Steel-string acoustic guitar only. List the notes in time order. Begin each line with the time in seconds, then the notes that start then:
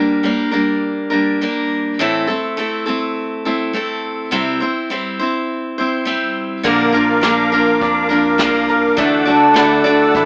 Already playing: G3 A#3 D4 A#4
0.23 G3 A#3 D4 A#4
0.51 G3 A#3 D4 A#4
1.10 G3 A#3 D4 A#4
1.41 G3 A#3 D4 A#4
1.99 A2 E3 A3 C4 E4 A4
2.27 A3 C4 E4 A4
2.57 A3 C4 E4 A4
2.86 A3 C4 E4 A4
3.45 A3 C4 E4 A4
3.73 A3 C4 E4 A4
4.31 C3 G3 C4 E4 C5
4.60 C4 E4 C5
4.90 G3 C4 E4 C5
5.19 C4 E4 C5
5.78 C4 E4 C5
6.05 G3 C4 E4 C5
6.63 A#2 D3 F3 A#3 D4 A#4
6.92 F3 A#3 D4 A#4
7.21 F3 A#3 D4 A#4
7.52 F3 A#3 D4 A#4
8.09 F3 A#3 D4 A#4
8.38 F3 A#3 D4 A#4
8.97 D3 E3 A3 D4 F#4 D5
9.25 A3 D4 F#4 D5
9.54 A3 D4 F#4 D5
9.84 A3 D4 F#4 D5